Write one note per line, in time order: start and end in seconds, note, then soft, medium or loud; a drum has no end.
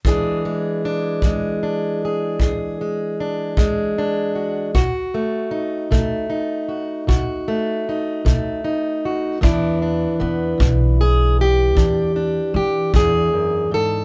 0.05 0.75 E2 medium
0.05 4.75 E3 medium
0.05 0.44 G#3 medium
0.05 0.84 D4 medium
0.05 2.02 G#4 medium
0.05 kick medium
0.45 1.23 G#3 medium
0.85 1.62 D4 medium
1.22 1.94 E2 medium
1.22 2.80 G#3 medium
1.22 kick medium
1.63 3.19 D4 medium
2.05 2.41 G#4 soft
2.40 3.11 E2 medium
2.40 4.35 G#4 soft
2.40 kick medium
2.81 3.57 G#3 soft
3.20 3.97 D4 medium
3.57 4.28 E2 medium
3.57 4.75 G#3 medium
3.57 kick medium
3.98 4.71 D4 medium
4.35 4.70 F#4 medium
4.75 5.45 B2 medium
4.75 6.67 F#4 medium
4.75 kick medium
5.14 5.90 A3 medium
5.51 6.28 D#4 medium
5.91 6.61 B2 medium
5.91 7.47 A3 medium
5.91 kick medium
6.30 7.86 D#4 medium
6.68 7.07 F#4 medium
7.07 7.78 B2 medium
7.07 9.04 F#4 medium
7.07 kick medium
7.48 8.24 A3 medium
7.89 8.63 D#4 soft
8.25 8.96 B2 medium
8.25 9.38 A3 medium
8.25 kick medium
8.64 9.38 D#4 medium
9.05 9.39 F#4 soft
9.41 10.12 E2 medium
9.41 10.06 E2 loud
9.41 14.05 E3 medium
9.41 10.19 B3 medium
9.41 9.81 D4 medium
9.41 11.00 E4 medium
9.41 kick medium
9.82 11.76 D4 soft
10.20 10.52 E2 medium
10.20 14.05 B3 soft
10.58 11.76 B1 loud
10.58 11.29 E2 medium
10.58 kick medium
11.01 11.39 G#4 loud
11.41 12.55 G4 medium
11.75 12.46 E2 medium
11.75 12.39 E2 medium
11.75 12.15 D4 soft
11.75 kick medium
12.16 14.05 D4 soft
12.54 12.85 E3 medium
12.54 12.94 G4 medium
12.94 13.87 E2 medium
12.94 13.33 E2 medium
12.94 13.72 G#4 loud
12.94 kick medium
13.33 13.71 F#2 medium
13.71 14.05 G#2 medium
13.71 14.05 A4 loud